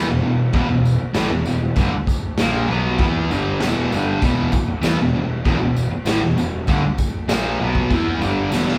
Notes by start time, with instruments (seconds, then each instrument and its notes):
0.07 picked electric bass E1, distorted electric guitar E2 B2
0.22 picked electric bass E1, distorted electric guitar E2 B2
0.53 picked electric bass E1, distorted electric guitar E2 B2, kick, tambourine, crash
0.68 picked electric bass E1, distorted electric guitar E2 B2
0.85 tambourine
0.98 muted distorted electric guitar stroke, muted picked electric bass stroke
1.14 picked electric bass A1, distorted electric guitar A2 E3, snare, tambourine, crash
1.30 picked electric bass E1, distorted electric guitar E2 B2
1.45 picked electric bass E1, distorted electric guitar E2 B2, tambourine
1.76 picked electric bass G1, distorted electric guitar G2 D3, kick, tambourine, crash
1.92 muted distorted electric guitar stroke, muted picked electric bass stroke
2.07 kick, tambourine
2.37 picked electric bass A#1, distorted electric guitar A#2 F3 A#3, snare, tambourine, crash
2.68 picked electric bass B1, distorted electric guitar B2 F#3 B3
2.98 picked electric bass E2, distorted electric guitar E3 B3 E4, kick, tambourine, crash
3.30 picked electric bass G1, distorted electric guitar G2 D3 G3, tambourine
3.60 picked electric bass E1, distorted electric guitar E2 B2 E3, snare, tambourine, crash
3.91 picked electric bass G1, distorted electric guitar G2 D3 G3, tambourine
4.21 picked electric bass E1, distorted electric guitar E2 B2 E3, kick, tambourine, crash
4.52 muted distorted electric guitar stroke, muted picked electric bass stroke, kick, tambourine
4.68 muted distorted electric guitar stroke, muted picked electric bass stroke
4.81 picked electric bass E2, distorted electric guitar E3 B3, snare, tambourine, crash
4.98 picked electric bass E1, distorted electric guitar E2 B2
5.15 picked electric bass E1, distorted electric guitar E2 B2
5.45 picked electric bass E1, distorted electric guitar E2 B2, kick, tambourine, crash
5.60 picked electric bass E1, distorted electric guitar E2 B2
5.76 tambourine
5.91 muted picked electric bass stroke, muted distorted electric guitar stroke
6.05 picked electric bass A1, distorted electric guitar A2 E3, snare, tambourine, crash
6.22 picked electric bass E1, distorted electric guitar E2 B2
6.36 picked electric bass E1, distorted electric guitar E2 B2, tambourine
6.67 picked electric bass G1, distorted electric guitar G2 D3, kick, tambourine, crash
6.83 muted distorted electric guitar stroke, muted picked electric bass stroke
6.98 kick, tambourine
7.28 picked electric bass A#1, distorted electric guitar A#2 F3 A#3, snare, tambourine, crash
7.60 picked electric bass B1, distorted electric guitar B2 F#3 B3
7.75 kick
7.91 picked electric bass E2, distorted electric guitar E3 B3 E4, kick, tambourine, crash
8.21 picked electric bass G1, distorted electric guitar G2 D3 G3, tambourine
8.52 picked electric bass E1, distorted electric guitar E2 B2 E3, snare, tambourine
8.68 snare